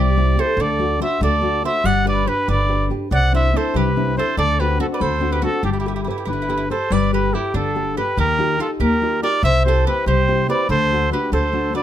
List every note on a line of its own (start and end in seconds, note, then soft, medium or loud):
0.00 0.35 C2 medium
0.00 0.36 G3 medium
0.00 0.35 G4 medium
0.00 0.42 D5 medium
0.17 0.36 C4 soft
0.17 0.36 E4 soft
0.17 0.37 G4 soft
0.37 0.54 C4 soft
0.37 0.54 E4 soft
0.37 0.54 G4 medium
0.37 0.58 A4 medium
0.37 0.63 C5 medium
0.57 0.98 D2 medium
0.57 0.99 D3 medium
0.57 1.01 A4 medium
0.61 1.02 D5 medium
0.79 0.98 A3 soft
0.79 0.99 D4 soft
0.79 0.99 F#4 soft
1.00 1.20 A3 soft
1.00 1.34 D4 soft
1.00 1.34 F#4 soft
1.00 1.20 C5 medium
1.00 1.21 E5 medium
1.21 1.62 D2 medium
1.21 1.40 A3 medium
1.21 1.61 A4 medium
1.21 1.62 D5 medium
1.41 1.62 A3 soft
1.41 1.63 D4 soft
1.41 1.63 F#4 soft
1.64 1.80 A3 soft
1.64 1.80 D4 soft
1.64 1.80 F#4 soft
1.64 1.86 C5 medium
1.64 1.87 E5 medium
1.84 2.25 G1 medium
1.84 2.25 G3 medium
1.84 2.07 D5 medium
1.84 2.07 F#5 loud
2.04 2.25 D4 soft
2.04 2.25 G4 soft
2.04 2.25 B4 soft
2.04 2.26 B4 medium
2.04 2.30 D5 medium
2.26 2.60 D4 soft
2.26 2.60 G4 soft
2.26 2.48 G4 medium
2.26 2.61 B4 soft
2.26 2.48 B4 medium
2.48 2.89 G1 medium
2.48 2.89 D3 medium
2.48 2.88 B4 medium
2.48 2.88 D5 medium
2.68 2.89 D4 soft
2.68 2.89 G4 soft
2.68 2.90 B4 soft
2.90 3.07 D4 soft
2.90 3.07 G4 soft
2.90 3.07 B4 soft
3.11 3.52 C2 medium
3.11 3.52 C3 soft
3.11 3.32 D5 medium
3.11 3.32 F#5 loud
3.32 3.52 C4 soft
3.32 3.52 D4 soft
3.32 3.53 E4 soft
3.32 3.53 C5 medium
3.32 3.58 E5 medium
3.53 3.87 C4 soft
3.53 3.87 D4 soft
3.53 3.88 E4 soft
3.53 3.76 A4 medium
3.53 3.78 C5 medium
3.74 4.15 C2 medium
3.74 4.15 G3 medium
3.74 4.18 G4 medium
3.74 4.17 B4 medium
3.96 4.15 C4 soft
3.96 4.15 D4 soft
3.96 4.16 E4 medium
4.17 4.33 C4 soft
4.17 4.33 D4 soft
4.17 4.34 E4 soft
4.17 4.37 A4 medium
4.17 4.36 C5 medium
4.37 4.79 D2 medium
4.37 4.78 D3 medium
4.37 4.60 A4 medium
4.37 4.62 D5 loud
4.59 4.78 C4 soft
4.59 4.78 D4 soft
4.59 4.79 F#4 soft
4.59 4.80 G4 medium
4.59 4.80 B4 medium
4.79 5.14 C4 soft
4.79 5.14 D4 soft
4.79 5.14 F#4 medium
4.79 4.85 F#4 medium
4.79 4.87 A4 medium
4.93 5.01 B4 medium
4.93 5.03 D5 medium
5.00 5.42 D2 medium
5.00 5.42 A3 medium
5.00 5.33 A4 medium
5.00 5.34 C5 medium
5.20 5.41 C4 soft
5.20 5.41 D4 soft
5.20 5.42 F#4 soft
5.32 5.42 G4 medium
5.32 5.43 B4 medium
5.42 5.59 C4 soft
5.42 5.60 D4 soft
5.42 5.62 F#4 medium
5.42 5.60 F#4 soft
5.42 5.63 A4 medium
5.63 6.05 G1 medium
5.63 6.05 G3 medium
5.63 5.71 D4 soft
5.63 5.71 G4 medium
5.72 5.79 E4 soft
5.72 5.79 G4 soft
5.80 5.87 E4 soft
5.80 5.87 G4 medium
5.85 5.95 E4 soft
5.85 6.06 G4 soft
5.85 5.94 G4 soft
5.85 6.06 A4 soft
5.85 6.06 B4 medium
5.95 6.02 E4 soft
5.95 6.02 G4 soft
6.03 6.09 E4 soft
6.03 6.09 G4 soft
6.07 6.17 E4 soft
6.07 6.41 G4 soft
6.07 6.16 G4 soft
6.07 6.41 A4 soft
6.07 6.41 B4 soft
6.18 6.24 E4 soft
6.18 6.25 G4 soft
6.25 6.68 G1 medium
6.25 6.69 D3 medium
6.25 6.32 E4 soft
6.25 6.28 G4 soft
6.25 6.68 B4 medium
6.33 6.40 E4 soft
6.42 6.48 E4 soft
6.48 6.56 E4 soft
6.48 6.69 G4 soft
6.48 6.69 A4 soft
6.48 6.70 B4 soft
6.57 6.63 E4 soft
6.70 6.87 G4 soft
6.70 6.87 A4 soft
6.70 6.92 A4 soft
6.70 6.87 B4 soft
6.70 6.94 C5 medium
6.90 7.32 G1 medium
6.90 7.32 G3 medium
6.90 7.13 B4 medium
6.90 7.13 D5 medium
7.13 7.32 G4 soft
7.13 7.35 G4 medium
7.13 7.32 A4 soft
7.13 7.33 B4 medium
7.13 7.35 B4 medium
7.33 7.54 E4 medium
7.33 7.67 G4 soft
7.33 7.55 G4 medium
7.33 7.68 A4 soft
7.33 7.68 B4 soft
7.54 7.95 G1 medium
7.54 7.96 D3 medium
7.54 7.94 D4 medium
7.54 7.95 A4 medium
7.75 7.96 G4 soft
7.75 7.96 A4 soft
7.75 7.97 B4 soft
7.97 8.14 G4 soft
7.97 8.17 G4 medium
7.97 8.14 A4 soft
7.97 8.16 B4 medium
7.97 8.14 B4 soft
8.17 8.59 D#2 medium
8.17 8.58 D#3 soft
8.17 8.57 G4 medium
8.17 8.58 A#4 medium
8.38 8.58 D#4 soft
8.38 8.58 F4 soft
8.38 8.59 G4 medium
8.59 8.93 D#4 soft
8.59 8.94 F4 soft
8.59 8.66 F4 medium
8.59 8.94 G4 soft
8.59 8.70 A4 medium
8.80 9.21 D#2 medium
8.80 9.21 A#3 medium
8.80 9.20 G4 medium
8.80 9.21 A#4 medium
9.02 9.22 D#4 soft
9.02 9.22 F4 soft
9.02 9.22 G4 soft
9.23 9.39 D#4 soft
9.23 9.40 F4 soft
9.23 9.40 G4 soft
9.23 9.43 A#4 medium
9.23 9.42 D5 medium
9.43 9.84 C2 loud
9.43 9.85 C3 medium
9.43 9.64 C5 medium
9.43 9.64 E5 loud
9.65 9.86 C4 soft
9.65 9.86 E4 soft
9.65 9.87 G4 soft
9.65 9.86 A4 medium
9.65 9.85 C5 medium
9.87 10.20 C4 soft
9.87 10.21 E4 soft
9.87 10.06 G4 medium
9.87 10.21 G4 medium
9.87 10.05 B4 medium
10.06 10.47 C2 medium
10.06 10.48 G3 medium
10.06 10.46 G4 medium
10.06 10.46 C5 medium
10.28 10.47 C4 soft
10.28 10.47 E4 soft
10.28 10.48 G4 soft
10.48 10.65 C4 soft
10.48 10.65 E4 soft
10.48 10.65 G4 soft
10.48 10.68 B4 medium
10.48 10.69 D5 medium
10.69 11.10 D2 medium
10.69 11.10 D3 medium
10.69 11.09 A4 medium
10.69 11.09 C5 medium
10.90 11.10 A3 soft
10.90 11.10 D4 soft
10.90 11.10 F#4 soft
11.11 11.31 A3 soft
11.11 11.46 D4 soft
11.11 11.46 F#4 soft
11.11 11.32 G4 medium
11.11 11.31 B4 medium
11.32 11.73 D2 medium
11.32 11.52 A3 medium
11.32 11.72 A4 medium
11.32 11.72 C5 medium
11.53 11.72 A3 soft
11.53 11.72 D4 soft
11.53 11.73 F#4 soft
11.73 11.83 A3 soft
11.73 11.83 D4 soft
11.73 11.83 F#4 soft
11.73 11.83 B4 medium
11.73 11.83 D5 medium